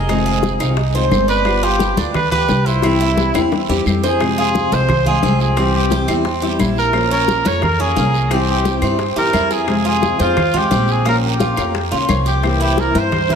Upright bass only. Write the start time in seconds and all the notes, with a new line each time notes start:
Already playing: F1
0.61 C2
1.11 G1
1.97 D2
2.49 C2
3.34 E2
3.69 E2
3.86 F2
4.71 C2
5.23 C2
6.08 E2
6.59 A#1
7.45 F2
7.97 C2
8.82 G2
9.16 G2
9.33 F2
10.20 F2
10.71 A#1
11.58 F2
11.92 C#2
12.09 C2
12.95 G2